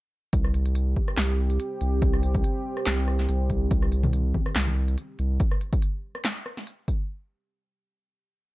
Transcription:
0.33 sub bass C2, analog synth pad C4 G4, kick, closed hi-hat
0.44 cross-stick
0.54 closed hi-hat
0.66 closed hi-hat
0.75 closed hi-hat
0.96 kick
1.08 cross-stick
1.17 sub bass C2, snare, clap, closed hi-hat
1.50 closed hi-hat
1.60 closed hi-hat
1.81 sub bass C2, closed hi-hat
2.02 kick, closed hi-hat
2.13 cross-stick
2.23 closed hi-hat
2.35 kick, closed hi-hat
2.44 closed hi-hat
2.77 cross-stick
2.86 sub bass C2, snare, clap, closed hi-hat
3.08 cross-stick
3.19 snare, closed hi-hat
3.29 sub bass C2, closed hi-hat
3.50 kick, closed hi-hat
3.71 sub bass C2, kick, closed hi-hat
3.82 cross-stick
3.92 closed hi-hat
4.03 closed hi-hat, high conga, low conga
4.13 closed hi-hat
4.34 kick, high conga
4.46 cross-stick
4.56 sub bass C2, snare, clap, closed hi-hat
4.67 high conga
4.88 closed hi-hat
4.98 closed hi-hat
5.19 sub bass C2, closed hi-hat
5.40 kick, closed hi-hat
5.51 cross-stick
5.61 closed hi-hat
5.73 kick, closed hi-hat
5.82 closed hi-hat
6.15 cross-stick
6.25 snare, clap, closed hi-hat
6.46 cross-stick
6.57 snare, closed hi-hat
6.67 closed hi-hat
6.88 kick, closed hi-hat

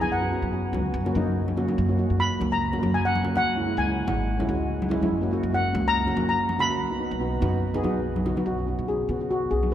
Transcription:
Already playing: upright bass E2
0.00 steel pan B3 E4 G#4 G#5, high conga
0.10 upright bass F#2, steel pan F#5
0.20 steel pan B3 C#4 F#4
0.31 steel pan B3 C#4 F#4
0.42 upright bass F#2
0.52 steel pan B3 C#4 F#4
0.72 upright bass C#2, steel pan B3 C#4 F#4, high conga, low conga
0.94 upright bass F#2
1.05 steel pan A#3 C#4 F#4, low conga
1.15 upright bass F#2, steel pan A#3 C#4 D#4, high conga
1.48 high conga
1.56 steel pan A#3 C#4 F#4, low conga
1.67 steel pan A#3 C#4 F#4, high conga
1.78 upright bass F#2
1.88 steel pan A#3 C#4 F#4
1.97 steel pan A#3 C#4 F#4
2.10 upright bass F#2
2.18 steel pan A#3 C#4 F#4 B5
2.39 upright bass C#2, steel pan A#3 C#4 F#4, high conga, low conga
2.52 steel pan A#5
2.72 steel pan A#3 C#4 F#4, low conga
2.81 upright bass F#2, steel pan A#3 C#4 F#4, high conga
2.94 steel pan G#5
3.05 steel pan F#5
3.15 high conga
3.23 steel pan A#3 C#4 F#4, low conga
3.35 steel pan A#3 C#4 F#4 F#5, high conga
3.45 upright bass C#2
3.55 steel pan G#3 C#4 E4
3.65 steel pan G#3 C#4 E4
3.77 upright bass C#2, steel pan G#5
3.85 steel pan G#3 C#4 E4
4.07 upright bass G#1, steel pan G#3 C#4 E4 F#5, high conga, low conga
4.38 steel pan G#3 C#4 E4, low conga
4.48 upright bass C#2, steel pan G#3 C#4 F#4
4.82 high conga
4.89 steel pan G#3 C#4 E4, low conga
5.01 steel pan G#3 C#4 E4, high conga
5.11 upright bass F#2
5.21 steel pan A#3 C#4 F#4
5.31 steel pan A#3 C#4 F#4
5.43 upright bass F#2
5.52 steel pan A#3 C#4 F#4 F#5
5.72 upright bass C#2, steel pan A#3 C#4 F#4, high conga, low conga
5.88 steel pan A#5
6.05 steel pan A#3 C#4 F#4, low conga
6.15 upright bass F#2, steel pan A#3 C#4 F#4, high conga
6.29 steel pan A#5
6.49 high conga
6.57 steel pan A#3 C#4 F#4 B5, low conga
6.69 steel pan A#3 C#4 F#4
6.79 upright bass B1
6.90 steel pan B3 D#4 F#4
6.98 steel pan B3 D#4 F#4
7.11 upright bass B1
7.20 steel pan B3 D#4 F#4
7.41 upright bass F#2, steel pan B3 D#4 F#4, high conga, low conga
7.74 steel pan B3 D#4 G#4, low conga
7.83 upright bass B1, steel pan B3 D#4 F#4, high conga
8.16 high conga
8.25 steel pan B3 D#4 F#4, low conga
8.36 steel pan B3 D#4 F#4, high conga
8.46 upright bass B1, steel pan F#4
8.57 steel pan B3 C#4 F#4
8.66 steel pan B3 C#4 F#4
8.79 upright bass B2
8.87 steel pan B3 C#4 F#4 G#4
9.08 upright bass B2, steel pan B3 C#4 F#4, low conga
9.19 steel pan B3 C#4 F#4
9.31 steel pan F#4
9.50 upright bass B1, steel pan B3 C#4 F#4 G#4
9.63 high conga
9.71 steel pan B3

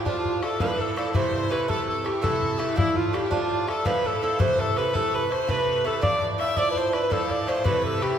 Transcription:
0.05 bouzouki A2 F3 D4, fiddle F4, alto saxophone F4, bodhran
0.25 bodhran
0.42 bouzouki F3 D4 E4, fiddle A4, alto saxophone A4, bodhran
0.59 bouzouki A2 F3 D4 E4, fiddle B4, alto saxophone B4, bodhran
0.78 fiddle A4, alto saxophone A4, bodhran
0.96 bouzouki A2 F3 D4 E4, alto saxophone A4, bodhran
1.13 bouzouki C3 E3 A3 E4, fiddle C5, alto saxophone C5, bodhran
1.49 bouzouki C3 E3 A3 E4, fiddle B4, alto saxophone B4, bodhran
1.68 bouzouki C3 E3 A3 E4, fiddle A4, alto saxophone A4, bodhran
1.88 alto saxophone A4, fiddle A4, bodhran
2.04 bouzouki E3 A3 E4, alto saxophone G4, fiddle G4, bodhran
2.21 bouzouki C3 E3 A3 E4, alto saxophone A4, fiddle A4, bodhran
2.43 bodhran
2.58 bouzouki C3 E3 A3 E4, alto saxophone E4, bodhran
2.76 bouzouki A2 F3 D4 E4, alto saxophone E4, fiddle E4, bodhran
2.96 alto saxophone F4, fiddle F4
3.11 bouzouki A2 F3 D4 E4, fiddle G4 A4, alto saxophone G4, bodhran
3.27 fiddle E4
3.31 bouzouki A2 F3 D4, fiddle F4, alto saxophone F4, bodhran
3.51 bodhran
3.67 bouzouki F3 D4 E4, alto saxophone A4, fiddle A4, bodhran
3.85 bouzouki A2 F3 D4 E4, fiddle B4, alto saxophone B4, bodhran
4.05 fiddle A4, alto saxophone A4, bodhran
4.21 bouzouki A2 F3 D4 E4, alto saxophone A4
4.39 bouzouki C3 E3 A3 E4, alto saxophone C5, fiddle C5, bodhran
4.59 fiddle A4, alto saxophone A4
4.76 bouzouki C3 E3 A3 E4, fiddle B4, alto saxophone B4, bodhran
4.93 bouzouki C3 E3 A3 E4, fiddle A4, alto saxophone A4, bodhran
5.14 fiddle B4, alto saxophone B4, bodhran
5.31 bouzouki E3 A3 E4, fiddle C5, alto saxophone C5, bodhran
5.48 bouzouki C3 E3 A3 E4, alto saxophone B4, fiddle B4, bodhran
5.68 bodhran
5.84 bouzouki C3 E3 A3 E4, fiddle A4, alto saxophone A4, bodhran
6.01 bouzouki A2 F3 D4 E4, alto saxophone D5, fiddle D5, bodhran
6.38 bouzouki A2 F3 D4 E4, fiddle E5, alto saxophone E5, bodhran
6.56 bouzouki A2 F3 D4 E4, alto saxophone D5, fiddle D5, bodhran
6.71 alto saxophone B4
6.76 alto saxophone C5, fiddle C5, bodhran
6.92 bouzouki F3 D4 E4, alto saxophone B4, fiddle B4, bodhran
7.10 bouzouki A2 F3 D4 E4, fiddle A4, alto saxophone A4, bodhran
7.31 alto saxophone D5, bodhran
7.47 bouzouki A2 F3 D4 E4, alto saxophone C5, fiddle C5, bodhran
7.64 bouzouki C3 E3 A3 E4, alto saxophone B4, fiddle B4, bodhran
7.85 alto saxophone A4
8.01 bouzouki C3 E3 A3 E4, fiddle G4, alto saxophone G4, bodhran

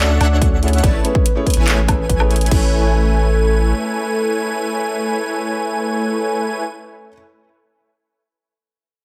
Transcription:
Already playing: 808-style bass D2, supersaw synth D4 A4 C#5 E5 F#5, soft synth lead D5, digital synth lead F#5
0.00 felt piano A3 C#4 D4 F#4 C#5
0.21 808-style bass D2, supersaw synth D4 A4 C#5 E5 F#5, soft synth lead D5, digital synth lead F#5, closed hi-hat, high woodblock
0.41 felt piano A3 C#4 D4 F#4 C#5, kick, closed hi-hat
0.61 felt piano A3 C#4 E4 G#4 C#5, closed hi-hat
0.68 closed hi-hat
0.73 closed hi-hat
0.78 closed hi-hat
0.84 808-style bass A1, supersaw synth A3 E4 B4 C#5 A5, soft synth lead D5, digital synth lead A5, kick, closed hi-hat
1.03 felt piano A3 C#4 E4 G#4 C#5, soft synth lead B4, closed hi-hat
1.15 kick
1.26 closed hi-hat
1.35 felt piano A3 C#4 E4 G#4 C#5
1.46 soft synth lead B4, kick, closed hi-hat
1.50 closed hi-hat
1.54 808-style bass A1, supersaw synth A3 E4 B4 C#5 G#5, digital synth lead G#5, closed hi-hat
1.66 felt piano A3 C#4 E4 G#4 C#5, clap, closed hi-hat
1.88 felt piano A3 C#4 E4 G#4 E5, soft synth lead B4, kick, closed hi-hat, high woodblock
2.09 kick, closed hi-hat
2.19 felt piano A3 C#4 E4 G#4 C#5, high woodblock
2.31 closed hi-hat
2.36 closed hi-hat
2.41 closed hi-hat
2.46 felt piano A3 C#4, closed hi-hat
2.51 808-style bass A1, supersaw synth A3 E4 B4 C#5 G#5, felt piano E4 A4 C#5, soft synth lead A4, digital synth lead G#5, kick, crash

